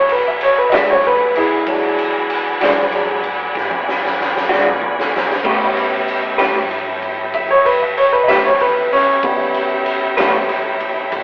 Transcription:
0.00 0.70 B1 medium
0.00 1.63 D4 medium
0.00 1.63 F#4 medium
0.00 1.63 G#4 medium
0.00 1.63 B4 medium
0.09 0.25 B4 medium
0.09 ride medium
0.28 0.41 E5 medium
0.41 0.57 C#5 medium
0.41 ride medium
0.58 0.72 B4 medium
0.70 1.64 D2 medium
0.70 0.92 G#3 medium
0.70 0.91 D4 medium
0.70 0.91 F#4 medium
0.70 0.73 D#5 medium
0.70 ride medium
0.74 0.92 E3 medium
0.74 0.88 E5 medium
0.74 snare loud
0.90 1.04 C#5 medium
1.04 1.36 B4 medium
1.04 ride medium
1.35 3.21 E4 medium
1.35 3.21 G#4 medium
1.35 ride medium
1.66 2.58 E2 medium
1.66 2.58 F#3 soft
1.66 2.58 G#3 soft
1.66 5.41 D4 medium
1.66 2.58 D4 medium
1.66 5.41 F#4 medium
1.66 5.41 G#4 medium
1.66 5.41 B4 medium
1.66 kick loud
1.66 ride medium
1.98 ride medium
2.30 ride medium
2.61 3.53 F#2 medium
2.61 2.81 E3 medium
2.61 2.80 G#3 medium
2.61 2.80 D4 medium
2.61 2.80 F#4 medium
2.61 snare loud
2.61 ride medium
2.92 3.22 F#3 soft
2.92 3.22 G#3 soft
2.92 3.22 D4 soft
2.92 ride medium
3.23 kick medium
3.23 ride medium
3.55 4.47 G#2 medium
3.55 kick loud
3.55 snare medium
3.71 high tom medium
3.89 snare medium
4.05 snare medium
4.20 snare medium
4.36 snare medium
4.49 5.41 B2 medium
4.49 4.70 E3 medium
4.49 4.69 G#3 medium
4.49 4.69 D4 medium
4.49 4.69 F#4 medium
4.49 snare medium
4.66 mid tom medium
4.81 mid tom medium
5.00 snare medium
5.16 snare loud
5.32 snare medium
5.44 6.36 A2 medium
5.44 5.63 A3 medium
5.44 9.19 B3 soft
5.44 5.63 C#4 medium
5.44 9.19 C#4 medium
5.44 8.91 C#4 medium
5.44 9.19 E4 medium
5.44 9.19 G4 medium
5.44 9.19 G4 soft
5.44 5.64 G4 medium
5.44 9.19 B4 medium
5.44 5.64 B4 medium
5.44 kick loud
5.44 crash medium
5.44 ride loud
5.77 ride medium
6.08 ride medium
6.38 7.31 G2 medium
6.38 6.59 A3 medium
6.38 6.59 C#4 medium
6.38 6.58 G4 medium
6.38 6.58 B4 medium
6.38 snare loud
6.38 ride medium
6.71 ride medium
7.02 kick medium
7.02 ride medium
7.34 8.26 F#2 medium
7.34 7.49 E5 medium
7.34 kick loud
7.34 ride medium
7.51 7.65 C#5 medium
7.66 7.80 B4 medium
7.66 ride medium
7.82 7.96 E5 medium
7.97 8.12 C#5 medium
7.97 ride medium
8.13 8.27 B4 medium
8.23 8.27 D#5 medium
8.28 9.20 E2 medium
8.28 8.48 A3 medium
8.28 8.48 C#4 medium
8.28 8.47 G4 medium
8.28 8.47 B4 medium
8.28 8.43 E5 medium
8.28 snare loud
8.28 ride medium
8.45 8.59 C#5 medium
8.60 8.91 B4 medium
8.60 ride medium
8.92 9.23 C#4 medium
8.92 snare soft
8.92 ride medium
9.23 10.15 C#2 medium
9.23 10.14 G3 soft
9.23 10.14 B3 soft
9.23 11.23 C#4 medium
9.23 10.14 C#4 soft
9.23 11.23 E4 medium
9.23 11.23 G4 medium
9.23 11.23 B4 medium
9.23 kick loud
9.23 ride medium
9.54 ride medium
9.86 ride medium
10.17 11.09 F#1 medium
10.17 10.46 G3 soft
10.17 10.37 A3 medium
10.17 10.46 B3 soft
10.17 10.46 C#4 soft
10.17 10.37 C#4 medium
10.17 10.37 G4 medium
10.17 10.36 B4 medium
10.17 snare loud
10.17 ride medium
10.49 ride medium
10.80 kick medium
10.80 ride medium
11.12 11.23 G1 medium
11.12 kick loud
11.12 ride medium

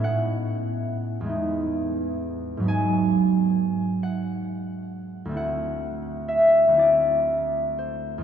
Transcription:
0.00 1.31 A2 medium
0.00 1.25 B3 soft
0.00 1.34 C#4 soft
0.00 2.72 E4 soft
0.00 1.35 F#4 soft
0.00 2.70 F#5 medium
1.21 2.67 E2 medium
1.21 5.14 G#3 soft
1.26 2.61 B3 soft
1.26 2.64 D#4 soft
2.57 5.36 G#2 medium
2.57 6.50 F#3 soft
2.62 5.38 B3 soft
2.62 5.40 D#4 soft
2.68 5.41 G#5 medium
4.03 5.35 F#5 medium
5.25 6.67 D2 medium
5.25 6.69 A3 soft
5.31 6.73 C4 soft
5.31 6.75 E4 soft
5.37 8.24 F#5 medium
6.28 8.24 E5 medium
6.68 8.24 D2 soft
6.68 8.24 A3 soft
6.74 8.24 C4 soft
6.74 8.24 E4 soft
6.79 8.24 D5 medium
7.78 8.24 C5 medium
8.18 8.24 E2 soft
8.18 8.24 G#3 soft

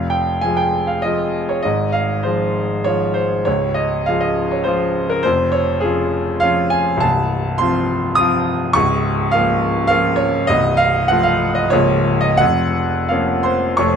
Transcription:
0.00 1.61 F1 soft
0.00 1.60 F2 soft
0.00 0.11 F5 medium
0.10 0.41 G5 medium
0.41 1.00 F3 soft
0.41 1.00 G#3 soft
0.41 1.00 F4 soft
0.41 0.57 G#5 medium
0.57 0.87 G5 medium
0.87 1.03 F5 medium
1.02 1.61 F3 soft
1.02 1.61 G#3 soft
1.02 1.61 F4 soft
1.02 1.49 D#5 medium
1.49 1.64 C#5 medium
1.63 3.43 G#1 soft
1.63 3.43 G#2 medium
1.63 1.94 D#5 medium
1.92 2.24 F5 medium
2.23 2.83 F3 soft
2.23 2.83 G#3 soft
2.23 2.83 F4 soft
2.23 2.85 C5 medium
2.84 3.43 F3 soft
2.84 3.43 G#3 soft
2.84 3.43 F4 soft
2.84 3.15 C#5 medium
3.14 3.45 C5 medium
3.45 5.22 C#1 soft
3.45 5.22 C#2 medium
3.45 3.76 C#5 medium
3.74 4.06 D#5 medium
4.06 4.63 F3 soft
4.06 4.63 G#3 soft
4.06 4.63 F4 soft
4.06 4.22 F5 medium
4.21 4.51 D#5 medium
4.51 4.66 C#5 medium
4.64 5.21 F3 soft
4.64 5.21 G#3 soft
4.64 5.22 F4 soft
4.64 5.09 C5 medium
5.10 5.25 A#4 medium
5.23 6.99 F1 medium
5.23 6.99 F2 medium
5.23 5.53 C5 medium
5.52 5.83 C#5 medium
5.80 6.39 F3 soft
5.80 6.39 C#4 soft
5.80 6.39 F4 soft
5.80 6.42 G#4 medium
6.40 6.99 F3 soft
6.40 6.99 C#4 soft
6.40 6.72 F5 medium
6.44 7.00 F4 medium
6.70 7.02 G#5 medium
6.97 8.69 C2 medium
6.97 7.60 A5 medium
7.03 8.72 C1 medium
7.58 8.14 F3 soft
7.58 8.14 C4 soft
7.58 8.14 F4 soft
7.58 8.17 C6 medium
8.15 8.72 F3 medium
8.15 8.73 C4 medium
8.15 8.73 F4 medium
8.15 8.75 D#6 loud
8.73 10.45 C#1 medium
8.73 10.45 C#2 medium
8.73 9.32 C#6 loud
9.31 9.85 F3 soft
9.31 9.86 A#3 soft
9.31 9.86 F4 soft
9.31 9.86 F5 medium
9.87 10.46 F3 medium
9.87 10.46 A#3 medium
9.87 10.46 F4 medium
9.87 10.18 F5 loud
10.16 10.48 C#5 medium
10.47 11.69 C1 medium
10.47 11.68 C2 medium
10.47 10.79 D#5 loud
10.77 11.09 F5 loud
11.08 11.68 F3 soft
11.08 11.69 A3 soft
11.08 11.69 F4 soft
11.08 11.24 F#5 medium
11.23 11.55 F5 medium
11.55 11.71 D#5 medium
11.70 12.38 C#1 medium
11.70 12.38 C#2 medium
11.70 12.35 F3 soft
11.70 12.36 A#3 soft
11.70 12.36 F4 soft
11.70 12.21 C#5 medium
12.21 12.39 D#5 medium
12.37 13.76 F1 medium
12.37 13.75 F2 medium
12.37 13.09 F#5 loud
13.09 13.76 F3 soft
13.09 13.76 A#3 soft
13.09 13.76 C#4 soft
13.09 13.96 F5 medium
13.43 13.76 C5 medium
13.43 13.78 C6 medium
13.77 13.96 F1 medium
13.77 13.96 F2 medium
13.77 13.96 F3 soft
13.77 13.96 A3 soft
13.77 13.96 C4 soft
13.77 13.96 C#5 medium
13.77 13.96 C#6 medium

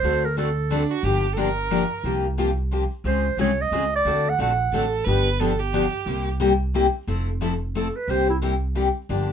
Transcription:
0.00 0.84 D2 medium
0.00 0.24 D3 medium
0.00 0.24 A3 medium
0.00 0.26 C5 loud
0.04 0.25 C4 medium
0.04 0.25 F#4 medium
0.04 0.25 A4 medium
0.25 0.37 A#4 medium
0.37 0.48 D3 medium
0.37 0.48 A3 medium
0.37 0.48 C4 medium
0.37 0.49 F#4 medium
0.37 0.87 A4 medium
0.37 0.49 A4 medium
0.70 0.81 D3 medium
0.70 0.82 A3 medium
0.70 0.82 C4 medium
0.70 0.92 D4 medium
0.70 0.82 F#4 medium
0.70 0.82 A4 medium
0.91 1.06 F#4 medium
1.03 1.84 G1 medium
1.03 1.25 D3 medium
1.03 1.25 F3 medium
1.03 1.25 A#3 medium
1.03 1.25 D4 medium
1.03 1.34 G4 medium
1.03 1.25 G4 medium
1.33 1.48 D3 medium
1.33 1.48 F3 medium
1.33 1.48 A#3 medium
1.33 1.39 A4 medium
1.37 1.48 D4 medium
1.37 1.49 G4 medium
1.37 2.04 A#4 medium
1.71 1.82 D3 medium
1.71 1.82 F3 medium
1.71 1.82 A#3 medium
1.71 1.82 D4 medium
1.71 1.82 G4 medium
2.04 2.84 C2 medium
2.04 2.25 C3 medium
2.04 2.25 F3 medium
2.04 2.26 A#3 medium
2.04 2.26 F4 medium
2.04 2.26 G4 medium
2.38 2.49 C3 medium
2.38 2.49 F3 medium
2.38 2.49 A#3 medium
2.38 2.49 F4 medium
2.38 2.50 G4 medium
2.71 2.82 C3 medium
2.71 2.83 F3 medium
2.71 2.83 A#3 medium
2.71 2.83 F4 medium
2.71 2.83 G4 medium
3.04 3.31 C#2 medium
3.04 3.26 C#3 medium
3.04 3.26 G#3 medium
3.04 3.26 C4 medium
3.04 3.26 F4 medium
3.04 3.26 G#4 medium
3.04 3.37 C5 medium
3.37 3.66 C2 medium
3.37 3.49 C#3 medium
3.37 3.50 G#3 medium
3.37 3.50 C4 medium
3.37 3.50 F4 medium
3.37 3.50 G#4 medium
3.37 3.63 C#5 medium
3.62 3.94 D#5 medium
3.71 4.00 C#2 medium
3.71 3.83 C#3 medium
3.71 3.83 G#3 medium
3.71 3.84 C4 medium
3.71 3.84 F4 medium
3.71 3.84 G#4 medium
3.96 4.31 D5 medium
4.05 4.32 D2 medium
4.05 4.26 D3 medium
4.05 4.26 A3 medium
4.05 4.27 C4 medium
4.05 4.27 F#4 medium
4.05 4.27 A4 medium
4.30 4.41 F#5 medium
4.39 4.67 A#1 medium
4.39 4.50 D3 medium
4.39 4.50 A3 medium
4.39 4.51 C4 medium
4.39 4.51 F#4 medium
4.39 4.51 A4 medium
4.39 4.91 F#5 medium
4.72 5.01 A1 medium
4.72 4.84 D3 medium
4.72 4.84 A3 medium
4.72 4.84 C4 medium
4.72 4.84 F#4 medium
4.72 5.06 A4 medium
4.72 4.85 A4 medium
5.04 5.87 G1 medium
5.04 5.27 D3 medium
5.04 5.27 F3 medium
5.04 5.28 B3 medium
5.04 5.28 D4 medium
5.04 5.28 G4 medium
5.04 5.41 B4 loud
5.40 5.51 D3 medium
5.40 5.51 F3 medium
5.40 5.51 B3 medium
5.40 5.52 D4 medium
5.40 5.52 G4 loud
5.40 5.60 A4 medium
5.59 6.27 G4 medium
5.73 5.84 D3 medium
5.73 5.85 F3 medium
5.73 5.85 B3 medium
5.73 5.85 D4 loud
5.73 5.85 G4 medium
6.06 6.87 C2 medium
6.06 6.28 C3 medium
6.06 6.28 G3 medium
6.06 6.28 A#3 medium
6.06 6.28 E4 medium
6.06 6.29 G4 medium
6.40 6.51 C3 medium
6.40 6.51 G3 medium
6.40 6.52 A#3 medium
6.40 6.52 E4 medium
6.40 6.52 G4 medium
6.74 6.85 C3 medium
6.74 6.85 G3 medium
6.74 6.86 A#3 medium
6.74 6.86 E4 medium
6.74 6.86 G4 medium
7.07 7.88 F1 medium
7.07 7.28 F3 medium
7.07 7.29 A3 medium
7.07 7.29 C4 medium
7.07 7.29 E4 medium
7.07 7.29 A4 medium
7.41 7.52 F3 medium
7.41 7.53 A3 medium
7.41 7.53 C4 medium
7.41 7.53 E4 medium
7.41 7.53 A4 medium
7.75 7.86 F3 medium
7.75 7.86 A3 medium
7.75 7.87 C4 medium
7.75 7.87 E4 medium
7.75 7.98 A4 medium
7.75 7.87 A4 medium
7.96 8.12 B4 medium
8.08 8.89 C2 medium
8.08 8.29 C3 medium
8.08 8.30 G3 medium
8.08 8.30 A#3 medium
8.08 8.30 E4 medium
8.08 8.30 G4 medium
8.08 8.29 C5 medium
8.30 8.38 E4 medium
8.42 8.53 C3 medium
8.42 8.53 G3 medium
8.42 8.54 A#3 medium
8.42 8.54 E4 medium
8.42 8.54 G4 medium
8.75 8.87 C3 medium
8.75 8.87 G3 medium
8.75 8.87 A#3 medium
8.75 8.87 E4 medium
8.75 8.87 G4 medium
9.09 9.32 G1 medium
9.09 9.30 D3 medium
9.09 9.30 F3 medium
9.09 9.31 A#3 medium
9.09 9.31 D4 medium
9.09 9.31 G4 medium

